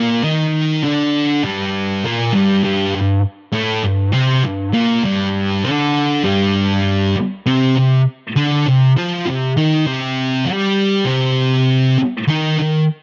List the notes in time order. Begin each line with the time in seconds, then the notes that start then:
Already playing: A#2 A#3
0.23 D#3 D#4
0.83 D3 D4
1.43 G2 G3
2.03 A#2 A#3
2.33 G2 G3
2.63 G2 G3
2.95 G2
3.53 A2 A3
3.83 G2
4.12 C3 C4
4.44 G2
4.73 A#2 A#3
5.03 G2 G3
5.63 D3 D4
6.23 G2 G3
7.16 muted distorted electric guitar stroke
7.46 C3 C4
7.76 C3
8.36 D3 D4
8.67 C3
8.96 F3 F4
9.26 C3
9.57 D#3 D#4
9.86 C3 C4
10.45 G3 G4
11.05 C3 C4
11.99 muted distorted electric guitar stroke
12.28 D#3 D#4
12.59 D#3